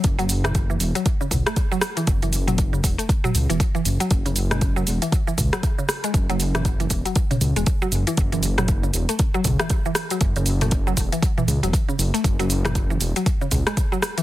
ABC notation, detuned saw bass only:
X:1
M:4/4
L:1/16
Q:"Swing 16ths" 1/4=118
K:F#m
V:1 name="Detuned saw bass" clef=bass
F,,, F,,,4- F,,, E,,, z3 C,, z4 z | F,,, F,,,4- F,,, E,,, z3 C,, E,,, z2 F,,, z | F,,, F,,,4- F,,, E,,, z3 C,, z4 z | F,,, F,,,4- F,,, E,,, z3 C,, E,,, z2 F,,, z |
F,,, F,,,4- F,,, E,,, z3 C,, z4 z | F,,, F,,,4- F,,, E,,, z3 C,, E,,, z2 F,,, z | F,,, F,,,4- F,,, E,,, z3 C,, z4 z |]